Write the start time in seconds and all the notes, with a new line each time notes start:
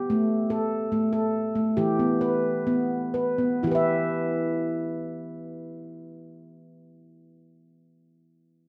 Already playing: G4
0.10 A3
0.50 A4
0.92 A3
1.13 A4
1.55 A3
1.77 E3 G4
1.99 B3
2.21 B4
2.67 B3
3.14 B4
3.38 B3
3.63 E3 E4
3.67 G4
3.71 B4 E5